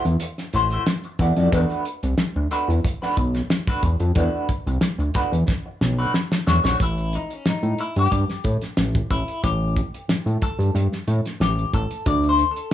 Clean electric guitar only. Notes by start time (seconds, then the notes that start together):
0.06 muted clean electric guitar stroke
0.22 muted clean electric guitar stroke
0.39 muted clean electric guitar stroke
0.54 A3 E4 F#4 C5
0.72 A3 E4 F#4 C5
0.88 muted clean electric guitar stroke
1.05 muted clean electric guitar stroke
1.20 A3 E4 F#4 D5
1.38 A3 E4 F#4 D5
1.52 A3 D4 F#4 B4
2.04 muted clean electric guitar stroke
2.36 muted clean electric guitar stroke
2.51 A3 D4 F#4 B4
2.69 muted clean electric guitar stroke
2.85 muted clean electric guitar stroke
3.02 A3 D4 F#4 B4
3.18 muted clean electric guitar stroke
3.35 muted clean electric guitar stroke
3.50 muted clean electric guitar stroke
3.68 A3 D4 F#4 B4
4.01 muted clean electric guitar stroke
4.16 A3 D4 F#4 B4
4.68 muted clean electric guitar stroke
5.00 muted clean electric guitar stroke
5.15 A3 D4 F#4 B4
5.33 muted clean electric guitar stroke
5.48 muted clean electric guitar stroke
5.66 muted clean electric guitar stroke
5.99 A3 D4 F#4 B4
6.14 muted clean electric guitar stroke
6.32 muted clean electric guitar stroke
6.47 A3 D4 F#4 C#5
6.64 A3 D4 F#4 C#5
6.82 E4
7.15 D#4
7.33 C#4
7.49 D#4
7.80 E4
7.99 G4
9.11 E4
9.44 G4
10.43 A4
11.42 G4
11.74 A4
12.08 D5
12.29 C5
12.51 A4